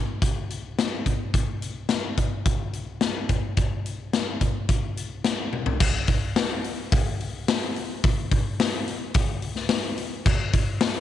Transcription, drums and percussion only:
0.22 kick, closed hi-hat
0.50 closed hi-hat
0.78 snare, closed hi-hat
1.06 kick, closed hi-hat
1.34 kick, closed hi-hat
1.62 closed hi-hat
1.89 snare, closed hi-hat
2.17 kick, closed hi-hat
2.45 kick, closed hi-hat
2.73 closed hi-hat
3.01 snare, closed hi-hat
3.29 kick, closed hi-hat
3.57 kick, closed hi-hat
3.86 closed hi-hat
4.13 snare, closed hi-hat
4.41 kick, closed hi-hat
4.69 kick, closed hi-hat
4.97 closed hi-hat
5.24 snare, closed hi-hat
5.53 high tom
5.66 floor tom
5.80 kick, crash
6.07 kick, open hi-hat
6.36 snare, open hi-hat
6.64 open hi-hat
6.92 kick, open hi-hat
7.21 open hi-hat
7.48 snare, open hi-hat
7.76 open hi-hat
8.04 kick, open hi-hat
8.31 kick, open hi-hat
8.60 snare, open hi-hat
8.88 open hi-hat
9.14 kick, open hi-hat
9.42 open hi-hat
9.56 snare
9.69 snare, open hi-hat
9.98 open hi-hat
10.26 kick, crash
10.53 kick, open hi-hat
10.81 snare, open hi-hat

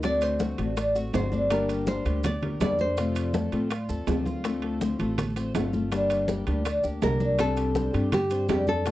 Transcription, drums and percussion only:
0.03 high bongo, high conga, high timbale, maracas
0.21 high bongo, high conga, high timbale, maracas
0.39 high bongo, high conga, low timbale, maracas
0.58 high bongo, high conga, high timbale, maracas
0.77 high bongo, high conga, high timbale, maracas
0.95 high bongo, high conga, maracas
1.14 high bongo, low bongo, high conga, high timbale, low timbale, maracas
1.32 high conga, maracas
1.50 high bongo, high conga, high timbale, maracas
1.69 high bongo, high conga, high timbale, maracas
1.87 high bongo, high conga, low timbale, maracas
2.05 high bongo, high timbale, maracas
2.23 high bongo, high conga, low conga, high timbale, maracas
2.42 high bongo, high conga, low conga, high timbale
2.61 high bongo, low bongo, high conga, high timbale, low timbale, maracas
2.79 high conga, maracas
2.97 high bongo, high conga, high timbale, maracas
3.15 high bongo, high conga, high timbale, maracas
3.34 high bongo, high conga, low timbale, maracas
3.52 high bongo, high conga, high timbale, maracas
3.71 high bongo, high conga, high timbale, maracas
3.89 high bongo, high conga, maracas
4.07 high bongo, low bongo, high conga, high timbale, low timbale, maracas
4.26 high conga, maracas
4.44 high bongo, high conga, high timbale, maracas
4.62 high bongo, high conga, high timbale
4.81 high bongo, high conga, low timbale, maracas
4.99 high bongo, high timbale, maracas
5.18 high bongo, high conga, low conga, high timbale, maracas
5.36 high bongo, high timbale, maracas
5.55 high bongo, low bongo, high conga, high timbale, low timbale, maracas
5.73 high conga, maracas
5.92 high bongo, high conga, high timbale, maracas
6.10 high bongo, high conga, high timbale, maracas
6.28 high bongo, high conga, low timbale, maracas
6.47 high bongo, high conga, high timbale, maracas
6.65 high bongo, high conga, high timbale, maracas
6.84 high bongo, high conga, maracas
7.02 high bongo, low bongo, high conga, high timbale, low timbale, maracas
7.20 high conga, maracas
7.39 high bongo, high timbale, maracas
7.57 high bongo, high conga, high timbale, maracas
7.75 high bongo, high conga, low timbale, maracas
7.94 high bongo, high timbale, maracas
8.12 high bongo, high conga, low conga, high timbale, maracas
8.30 high bongo, high conga, high timbale, maracas
8.49 high bongo, low bongo, high conga, high timbale, low timbale, maracas
8.67 high conga, maracas
8.86 high bongo, high conga, high timbale, maracas

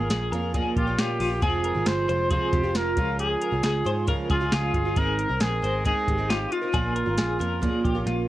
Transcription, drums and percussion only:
0.10 snare, closed hi-hat
0.33 closed hi-hat
0.54 kick, closed hi-hat
0.76 kick, closed hi-hat
0.98 snare, closed hi-hat
1.20 open hi-hat
1.42 kick, closed hi-hat
1.64 closed hi-hat
1.86 snare, closed hi-hat
2.09 closed hi-hat
2.31 kick, closed hi-hat
2.53 kick, snare, closed hi-hat
2.75 snare, closed hi-hat
2.97 kick, closed hi-hat
3.19 closed hi-hat
3.42 closed hi-hat
3.63 snare, closed hi-hat
3.87 closed hi-hat
4.08 kick, closed hi-hat
4.30 kick, snare, closed hi-hat
4.52 snare, closed hi-hat
4.74 kick, closed hi-hat
4.97 kick, closed hi-hat
5.19 closed hi-hat
5.41 snare, closed hi-hat
5.64 closed hi-hat
5.85 kick, closed hi-hat
6.08 kick, snare, closed hi-hat
6.30 snare, closed hi-hat
6.52 closed hi-hat
6.74 kick, closed hi-hat
6.96 closed hi-hat
7.18 snare, closed hi-hat
7.41 closed hi-hat
7.63 kick, closed hi-hat
7.85 kick, closed hi-hat
8.07 snare, closed hi-hat

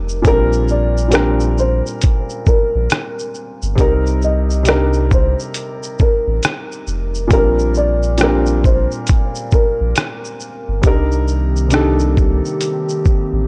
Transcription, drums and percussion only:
0.09 shaker
0.25 kick, closed hi-hat, shaker
0.53 shaker
0.68 shaker
0.97 shaker
1.12 cross-stick, closed hi-hat, shaker
1.40 shaker
1.58 shaker
1.86 shaker
2.02 kick, closed hi-hat, shaker
2.30 shaker
2.46 kick, shaker
2.90 cross-stick, closed hi-hat, shaker
3.19 shaker
3.34 shaker
3.62 shaker
3.78 kick, closed hi-hat, shaker
4.06 shaker
4.22 shaker
4.50 shaker
4.65 cross-stick, closed hi-hat, shaker
4.93 shaker
5.11 kick, shaker
5.39 shaker
5.54 closed hi-hat, shaker
5.83 shaker
5.99 kick, shaker
6.43 cross-stick, closed hi-hat, shaker
6.72 shaker
6.87 shaker
7.14 shaker
7.31 kick, closed hi-hat, shaker
7.59 shaker
7.74 shaker
8.03 shaker
8.18 cross-stick, closed hi-hat, shaker
8.46 shaker
8.64 kick, shaker
8.91 shaker
9.07 kick, closed hi-hat, shaker
9.35 shaker
9.51 kick, shaker
9.96 cross-stick, closed hi-hat, shaker
10.25 shaker
10.40 shaker
10.83 kick, closed hi-hat, shaker
11.12 shaker
11.28 shaker
11.56 shaker
11.70 cross-stick, closed hi-hat, shaker
11.99 shaker
12.17 kick, shaker
12.45 shaker
12.61 closed hi-hat, shaker
12.89 shaker
13.05 kick, shaker

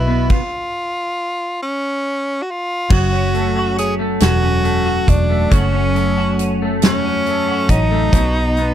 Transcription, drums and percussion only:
0.30 kick, crash
2.90 kick, crash
3.34 closed hi-hat
3.78 closed hi-hat
4.20 snare, closed hi-hat
4.65 closed hi-hat
5.08 kick, closed hi-hat
5.51 kick, closed hi-hat
5.96 closed hi-hat
6.39 closed hi-hat
6.82 snare, closed hi-hat
7.26 closed hi-hat
7.69 kick, closed hi-hat
8.13 kick, closed hi-hat
8.57 closed hi-hat

